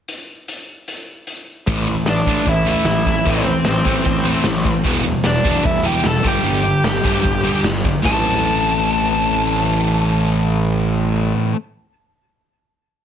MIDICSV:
0, 0, Header, 1, 6, 480
1, 0, Start_track
1, 0, Key_signature, 0, "minor"
1, 0, Tempo, 397614
1, 107, Time_signature, 4, 2, 24, 8
1, 15750, End_track
2, 0, Start_track
2, 0, Title_t, "Lead electric guitar"
2, 0, Program_c, 0, 29
2, 2513, Note_on_c, 0, 62, 70
2, 2522, Note_on_c, 0, 74, 89
2, 2954, Note_off_c, 0, 62, 0
2, 2993, Note_on_c, 0, 64, 74
2, 3004, Note_off_c, 0, 74, 0
2, 3009, Note_on_c, 0, 76, 102
2, 3211, Note_off_c, 0, 64, 0
2, 3235, Note_off_c, 0, 76, 0
2, 3240, Note_on_c, 0, 64, 83
2, 3249, Note_on_c, 0, 76, 98
2, 3903, Note_off_c, 0, 64, 0
2, 3977, Note_off_c, 0, 76, 0
2, 3979, Note_on_c, 0, 60, 63
2, 3985, Note_on_c, 0, 72, 76
2, 5355, Note_off_c, 0, 60, 0
2, 5358, Note_off_c, 0, 72, 0
2, 6348, Note_on_c, 0, 62, 65
2, 6353, Note_on_c, 0, 74, 71
2, 6795, Note_off_c, 0, 74, 0
2, 6796, Note_off_c, 0, 62, 0
2, 6817, Note_on_c, 0, 76, 92
2, 6823, Note_on_c, 0, 64, 58
2, 7048, Note_off_c, 0, 64, 0
2, 7072, Note_off_c, 0, 76, 0
2, 7073, Note_on_c, 0, 79, 97
2, 7079, Note_on_c, 0, 67, 77
2, 7299, Note_off_c, 0, 67, 0
2, 7315, Note_off_c, 0, 79, 0
2, 7315, Note_on_c, 0, 81, 101
2, 7326, Note_on_c, 0, 69, 78
2, 7543, Note_off_c, 0, 69, 0
2, 7561, Note_off_c, 0, 81, 0
2, 7570, Note_on_c, 0, 79, 92
2, 7580, Note_on_c, 0, 67, 76
2, 9198, Note_off_c, 0, 79, 0
2, 9203, Note_off_c, 0, 67, 0
2, 9727, Note_on_c, 0, 81, 87
2, 13677, Note_off_c, 0, 81, 0
2, 15750, End_track
3, 0, Start_track
3, 0, Title_t, "Distorted electric guitar"
3, 0, Program_c, 1, 30
3, 2021, Note_on_c, 1, 45, 91
3, 2032, Note_on_c, 1, 52, 95
3, 2035, Note_on_c, 1, 57, 103
3, 2247, Note_off_c, 1, 45, 0
3, 2249, Note_off_c, 1, 52, 0
3, 2254, Note_off_c, 1, 57, 0
3, 2262, Note_on_c, 1, 45, 68
3, 2263, Note_on_c, 1, 52, 66
3, 2478, Note_off_c, 1, 45, 0
3, 2479, Note_off_c, 1, 52, 0
3, 2495, Note_on_c, 1, 45, 79
3, 2500, Note_on_c, 1, 52, 73
3, 2714, Note_off_c, 1, 45, 0
3, 2717, Note_off_c, 1, 52, 0
3, 2742, Note_on_c, 1, 45, 86
3, 2750, Note_on_c, 1, 52, 95
3, 2753, Note_on_c, 1, 57, 92
3, 2957, Note_off_c, 1, 45, 0
3, 2966, Note_off_c, 1, 52, 0
3, 2972, Note_on_c, 1, 45, 71
3, 2973, Note_off_c, 1, 57, 0
3, 2981, Note_on_c, 1, 52, 80
3, 3190, Note_off_c, 1, 45, 0
3, 3197, Note_off_c, 1, 52, 0
3, 3204, Note_on_c, 1, 45, 77
3, 3215, Note_on_c, 1, 52, 89
3, 3221, Note_on_c, 1, 57, 93
3, 3439, Note_off_c, 1, 45, 0
3, 3444, Note_off_c, 1, 52, 0
3, 3447, Note_off_c, 1, 57, 0
3, 3459, Note_on_c, 1, 45, 79
3, 3464, Note_on_c, 1, 52, 81
3, 3676, Note_off_c, 1, 45, 0
3, 3679, Note_off_c, 1, 52, 0
3, 3703, Note_on_c, 1, 45, 65
3, 3706, Note_on_c, 1, 52, 68
3, 3915, Note_off_c, 1, 45, 0
3, 3920, Note_off_c, 1, 52, 0
3, 3930, Note_on_c, 1, 45, 90
3, 3935, Note_on_c, 1, 52, 102
3, 3940, Note_on_c, 1, 57, 108
3, 4162, Note_off_c, 1, 45, 0
3, 4164, Note_off_c, 1, 52, 0
3, 4167, Note_off_c, 1, 57, 0
3, 4185, Note_on_c, 1, 45, 64
3, 4189, Note_on_c, 1, 52, 72
3, 4400, Note_off_c, 1, 45, 0
3, 4402, Note_off_c, 1, 52, 0
3, 4420, Note_on_c, 1, 45, 70
3, 4422, Note_on_c, 1, 52, 82
3, 4638, Note_off_c, 1, 45, 0
3, 4639, Note_off_c, 1, 52, 0
3, 4656, Note_on_c, 1, 45, 87
3, 4667, Note_on_c, 1, 52, 88
3, 4676, Note_on_c, 1, 57, 94
3, 4878, Note_off_c, 1, 45, 0
3, 4880, Note_off_c, 1, 52, 0
3, 4892, Note_on_c, 1, 45, 67
3, 4895, Note_on_c, 1, 52, 81
3, 4896, Note_off_c, 1, 57, 0
3, 5115, Note_off_c, 1, 45, 0
3, 5116, Note_off_c, 1, 52, 0
3, 5129, Note_on_c, 1, 45, 80
3, 5136, Note_on_c, 1, 52, 83
3, 5143, Note_on_c, 1, 57, 77
3, 5363, Note_off_c, 1, 45, 0
3, 5366, Note_off_c, 1, 52, 0
3, 5370, Note_off_c, 1, 57, 0
3, 5376, Note_on_c, 1, 45, 79
3, 5379, Note_on_c, 1, 52, 90
3, 5597, Note_off_c, 1, 45, 0
3, 5599, Note_off_c, 1, 52, 0
3, 5620, Note_on_c, 1, 45, 69
3, 5627, Note_on_c, 1, 52, 72
3, 5839, Note_off_c, 1, 45, 0
3, 5839, Note_off_c, 1, 52, 0
3, 5854, Note_on_c, 1, 52, 90
3, 5870, Note_on_c, 1, 55, 99
3, 5875, Note_on_c, 1, 59, 102
3, 6075, Note_off_c, 1, 52, 0
3, 6080, Note_off_c, 1, 55, 0
3, 6090, Note_on_c, 1, 52, 69
3, 6094, Note_on_c, 1, 55, 75
3, 6097, Note_off_c, 1, 59, 0
3, 6315, Note_off_c, 1, 52, 0
3, 6317, Note_off_c, 1, 55, 0
3, 6334, Note_on_c, 1, 52, 64
3, 6334, Note_on_c, 1, 55, 67
3, 6557, Note_off_c, 1, 55, 0
3, 6558, Note_off_c, 1, 52, 0
3, 6571, Note_on_c, 1, 52, 84
3, 6574, Note_on_c, 1, 55, 91
3, 6579, Note_on_c, 1, 59, 88
3, 6789, Note_off_c, 1, 52, 0
3, 6797, Note_off_c, 1, 55, 0
3, 6804, Note_on_c, 1, 52, 68
3, 6810, Note_off_c, 1, 59, 0
3, 6811, Note_on_c, 1, 55, 81
3, 7028, Note_off_c, 1, 52, 0
3, 7037, Note_off_c, 1, 55, 0
3, 7043, Note_on_c, 1, 52, 78
3, 7050, Note_on_c, 1, 55, 95
3, 7059, Note_on_c, 1, 59, 90
3, 7269, Note_off_c, 1, 52, 0
3, 7278, Note_off_c, 1, 55, 0
3, 7283, Note_on_c, 1, 52, 77
3, 7291, Note_off_c, 1, 59, 0
3, 7292, Note_on_c, 1, 55, 85
3, 7514, Note_off_c, 1, 52, 0
3, 7519, Note_off_c, 1, 55, 0
3, 7530, Note_on_c, 1, 43, 75
3, 7537, Note_on_c, 1, 50, 80
3, 7540, Note_on_c, 1, 55, 97
3, 7756, Note_off_c, 1, 43, 0
3, 7765, Note_off_c, 1, 50, 0
3, 7770, Note_on_c, 1, 43, 96
3, 7772, Note_off_c, 1, 55, 0
3, 7780, Note_on_c, 1, 50, 108
3, 7788, Note_on_c, 1, 55, 114
3, 8008, Note_off_c, 1, 43, 0
3, 8013, Note_off_c, 1, 50, 0
3, 8017, Note_off_c, 1, 55, 0
3, 8028, Note_on_c, 1, 43, 63
3, 8032, Note_on_c, 1, 50, 79
3, 8247, Note_off_c, 1, 43, 0
3, 8250, Note_off_c, 1, 50, 0
3, 8263, Note_on_c, 1, 43, 75
3, 8269, Note_on_c, 1, 50, 77
3, 8485, Note_off_c, 1, 43, 0
3, 8488, Note_off_c, 1, 50, 0
3, 8502, Note_on_c, 1, 50, 92
3, 8503, Note_on_c, 1, 43, 91
3, 8510, Note_on_c, 1, 55, 92
3, 8735, Note_off_c, 1, 50, 0
3, 8736, Note_off_c, 1, 43, 0
3, 8739, Note_off_c, 1, 55, 0
3, 8750, Note_on_c, 1, 43, 75
3, 8751, Note_on_c, 1, 50, 70
3, 8966, Note_off_c, 1, 43, 0
3, 8970, Note_off_c, 1, 50, 0
3, 8980, Note_on_c, 1, 43, 75
3, 8987, Note_on_c, 1, 50, 76
3, 8994, Note_on_c, 1, 55, 90
3, 9215, Note_off_c, 1, 43, 0
3, 9218, Note_off_c, 1, 50, 0
3, 9221, Note_off_c, 1, 55, 0
3, 9233, Note_on_c, 1, 43, 69
3, 9238, Note_on_c, 1, 50, 85
3, 9452, Note_off_c, 1, 43, 0
3, 9454, Note_off_c, 1, 50, 0
3, 9474, Note_on_c, 1, 43, 58
3, 9477, Note_on_c, 1, 50, 64
3, 9685, Note_off_c, 1, 43, 0
3, 9689, Note_on_c, 1, 45, 93
3, 9694, Note_off_c, 1, 50, 0
3, 9703, Note_on_c, 1, 52, 105
3, 9723, Note_on_c, 1, 57, 92
3, 9729, Note_on_c, 1, 60, 108
3, 9735, Note_on_c, 1, 64, 104
3, 13915, Note_off_c, 1, 45, 0
3, 13928, Note_off_c, 1, 52, 0
3, 13948, Note_off_c, 1, 57, 0
3, 13954, Note_off_c, 1, 60, 0
3, 13960, Note_off_c, 1, 64, 0
3, 15750, End_track
4, 0, Start_track
4, 0, Title_t, "Distorted electric guitar"
4, 0, Program_c, 2, 30
4, 5846, Note_on_c, 2, 47, 96
4, 5847, Note_on_c, 2, 40, 83
4, 6057, Note_off_c, 2, 40, 0
4, 6061, Note_off_c, 2, 47, 0
4, 6072, Note_on_c, 2, 40, 76
4, 6076, Note_on_c, 2, 47, 78
4, 6306, Note_off_c, 2, 40, 0
4, 6308, Note_off_c, 2, 47, 0
4, 6336, Note_on_c, 2, 40, 74
4, 6339, Note_on_c, 2, 47, 78
4, 6551, Note_off_c, 2, 40, 0
4, 6560, Note_off_c, 2, 47, 0
4, 6566, Note_on_c, 2, 40, 89
4, 6582, Note_on_c, 2, 47, 112
4, 6795, Note_off_c, 2, 40, 0
4, 6801, Note_off_c, 2, 47, 0
4, 6810, Note_on_c, 2, 40, 75
4, 6815, Note_on_c, 2, 47, 75
4, 7029, Note_off_c, 2, 40, 0
4, 7035, Note_off_c, 2, 47, 0
4, 7044, Note_on_c, 2, 40, 92
4, 7050, Note_on_c, 2, 47, 97
4, 7273, Note_off_c, 2, 40, 0
4, 7279, Note_off_c, 2, 47, 0
4, 7288, Note_on_c, 2, 40, 84
4, 7293, Note_on_c, 2, 47, 100
4, 7506, Note_off_c, 2, 40, 0
4, 7519, Note_off_c, 2, 47, 0
4, 15750, End_track
5, 0, Start_track
5, 0, Title_t, "Picked electric bass"
5, 0, Program_c, 3, 34
5, 2018, Note_on_c, 3, 33, 101
5, 2340, Note_off_c, 3, 33, 0
5, 2489, Note_on_c, 3, 33, 87
5, 2653, Note_off_c, 3, 33, 0
5, 2728, Note_on_c, 3, 33, 81
5, 2893, Note_off_c, 3, 33, 0
5, 2971, Note_on_c, 3, 33, 80
5, 3295, Note_off_c, 3, 33, 0
5, 3435, Note_on_c, 3, 33, 83
5, 3764, Note_off_c, 3, 33, 0
5, 3925, Note_on_c, 3, 33, 91
5, 4251, Note_off_c, 3, 33, 0
5, 4417, Note_on_c, 3, 33, 81
5, 4579, Note_off_c, 3, 33, 0
5, 4649, Note_on_c, 3, 33, 84
5, 4814, Note_off_c, 3, 33, 0
5, 4885, Note_on_c, 3, 33, 80
5, 5212, Note_off_c, 3, 33, 0
5, 5366, Note_on_c, 3, 33, 84
5, 5693, Note_off_c, 3, 33, 0
5, 5842, Note_on_c, 3, 28, 85
5, 6171, Note_off_c, 3, 28, 0
5, 6336, Note_on_c, 3, 28, 88
5, 6500, Note_off_c, 3, 28, 0
5, 6574, Note_on_c, 3, 28, 91
5, 6739, Note_off_c, 3, 28, 0
5, 6817, Note_on_c, 3, 28, 90
5, 7143, Note_off_c, 3, 28, 0
5, 7289, Note_on_c, 3, 28, 93
5, 7457, Note_off_c, 3, 28, 0
5, 7531, Note_on_c, 3, 31, 87
5, 7699, Note_off_c, 3, 31, 0
5, 7766, Note_on_c, 3, 31, 94
5, 8096, Note_off_c, 3, 31, 0
5, 8259, Note_on_c, 3, 31, 75
5, 8425, Note_off_c, 3, 31, 0
5, 8498, Note_on_c, 3, 31, 84
5, 8665, Note_off_c, 3, 31, 0
5, 8736, Note_on_c, 3, 31, 83
5, 9064, Note_off_c, 3, 31, 0
5, 9212, Note_on_c, 3, 31, 82
5, 9541, Note_off_c, 3, 31, 0
5, 9714, Note_on_c, 3, 33, 92
5, 13665, Note_off_c, 3, 33, 0
5, 15750, End_track
6, 0, Start_track
6, 0, Title_t, "Drums"
6, 100, Note_on_c, 9, 42, 58
6, 221, Note_off_c, 9, 42, 0
6, 582, Note_on_c, 9, 42, 56
6, 702, Note_off_c, 9, 42, 0
6, 1060, Note_on_c, 9, 42, 60
6, 1180, Note_off_c, 9, 42, 0
6, 1533, Note_on_c, 9, 42, 50
6, 1654, Note_off_c, 9, 42, 0
6, 2010, Note_on_c, 9, 46, 73
6, 2018, Note_on_c, 9, 36, 99
6, 2131, Note_off_c, 9, 46, 0
6, 2139, Note_off_c, 9, 36, 0
6, 2251, Note_on_c, 9, 46, 53
6, 2372, Note_off_c, 9, 46, 0
6, 2486, Note_on_c, 9, 46, 72
6, 2487, Note_on_c, 9, 38, 108
6, 2606, Note_off_c, 9, 46, 0
6, 2608, Note_off_c, 9, 38, 0
6, 2729, Note_on_c, 9, 46, 57
6, 2733, Note_on_c, 9, 36, 86
6, 2849, Note_off_c, 9, 46, 0
6, 2854, Note_off_c, 9, 36, 0
6, 2970, Note_on_c, 9, 46, 67
6, 2973, Note_on_c, 9, 36, 111
6, 3091, Note_off_c, 9, 46, 0
6, 3094, Note_off_c, 9, 36, 0
6, 3204, Note_on_c, 9, 46, 52
6, 3325, Note_off_c, 9, 46, 0
6, 3442, Note_on_c, 9, 46, 72
6, 3443, Note_on_c, 9, 38, 101
6, 3562, Note_off_c, 9, 46, 0
6, 3564, Note_off_c, 9, 38, 0
6, 3684, Note_on_c, 9, 46, 50
6, 3692, Note_on_c, 9, 36, 77
6, 3804, Note_off_c, 9, 46, 0
6, 3813, Note_off_c, 9, 36, 0
6, 3931, Note_on_c, 9, 46, 79
6, 3932, Note_on_c, 9, 36, 113
6, 4052, Note_off_c, 9, 46, 0
6, 4053, Note_off_c, 9, 36, 0
6, 4166, Note_on_c, 9, 46, 50
6, 4287, Note_off_c, 9, 46, 0
6, 4402, Note_on_c, 9, 46, 63
6, 4403, Note_on_c, 9, 38, 103
6, 4522, Note_off_c, 9, 46, 0
6, 4524, Note_off_c, 9, 38, 0
6, 4653, Note_on_c, 9, 46, 55
6, 4655, Note_on_c, 9, 36, 90
6, 4773, Note_off_c, 9, 46, 0
6, 4775, Note_off_c, 9, 36, 0
6, 4892, Note_on_c, 9, 36, 99
6, 4897, Note_on_c, 9, 46, 71
6, 5013, Note_off_c, 9, 36, 0
6, 5018, Note_off_c, 9, 46, 0
6, 5130, Note_on_c, 9, 46, 50
6, 5251, Note_off_c, 9, 46, 0
6, 5356, Note_on_c, 9, 46, 74
6, 5358, Note_on_c, 9, 38, 102
6, 5477, Note_off_c, 9, 46, 0
6, 5478, Note_off_c, 9, 38, 0
6, 5602, Note_on_c, 9, 46, 49
6, 5608, Note_on_c, 9, 36, 84
6, 5723, Note_off_c, 9, 46, 0
6, 5729, Note_off_c, 9, 36, 0
6, 5836, Note_on_c, 9, 46, 77
6, 5848, Note_on_c, 9, 36, 115
6, 5957, Note_off_c, 9, 46, 0
6, 5969, Note_off_c, 9, 36, 0
6, 6084, Note_on_c, 9, 46, 47
6, 6205, Note_off_c, 9, 46, 0
6, 6321, Note_on_c, 9, 46, 68
6, 6323, Note_on_c, 9, 38, 105
6, 6442, Note_off_c, 9, 46, 0
6, 6443, Note_off_c, 9, 38, 0
6, 6576, Note_on_c, 9, 36, 85
6, 6579, Note_on_c, 9, 46, 61
6, 6696, Note_off_c, 9, 36, 0
6, 6700, Note_off_c, 9, 46, 0
6, 6816, Note_on_c, 9, 36, 108
6, 6818, Note_on_c, 9, 46, 75
6, 6937, Note_off_c, 9, 36, 0
6, 6939, Note_off_c, 9, 46, 0
6, 7049, Note_on_c, 9, 46, 60
6, 7170, Note_off_c, 9, 46, 0
6, 7288, Note_on_c, 9, 46, 72
6, 7289, Note_on_c, 9, 38, 102
6, 7408, Note_off_c, 9, 46, 0
6, 7409, Note_off_c, 9, 38, 0
6, 7536, Note_on_c, 9, 46, 60
6, 7538, Note_on_c, 9, 36, 90
6, 7657, Note_off_c, 9, 46, 0
6, 7659, Note_off_c, 9, 36, 0
6, 7785, Note_on_c, 9, 46, 78
6, 7906, Note_off_c, 9, 46, 0
6, 8028, Note_on_c, 9, 46, 53
6, 8149, Note_off_c, 9, 46, 0
6, 8259, Note_on_c, 9, 46, 69
6, 8261, Note_on_c, 9, 38, 113
6, 8380, Note_off_c, 9, 46, 0
6, 8381, Note_off_c, 9, 38, 0
6, 8501, Note_on_c, 9, 46, 51
6, 8503, Note_on_c, 9, 36, 90
6, 8621, Note_off_c, 9, 46, 0
6, 8624, Note_off_c, 9, 36, 0
6, 8742, Note_on_c, 9, 46, 70
6, 8746, Note_on_c, 9, 36, 106
6, 8863, Note_off_c, 9, 46, 0
6, 8867, Note_off_c, 9, 36, 0
6, 8988, Note_on_c, 9, 46, 48
6, 9109, Note_off_c, 9, 46, 0
6, 9227, Note_on_c, 9, 46, 76
6, 9228, Note_on_c, 9, 38, 103
6, 9347, Note_off_c, 9, 46, 0
6, 9348, Note_off_c, 9, 38, 0
6, 9466, Note_on_c, 9, 46, 47
6, 9468, Note_on_c, 9, 36, 85
6, 9586, Note_off_c, 9, 46, 0
6, 9589, Note_off_c, 9, 36, 0
6, 9713, Note_on_c, 9, 36, 103
6, 9720, Note_on_c, 9, 38, 90
6, 9834, Note_off_c, 9, 36, 0
6, 9841, Note_off_c, 9, 38, 0
6, 15750, End_track
0, 0, End_of_file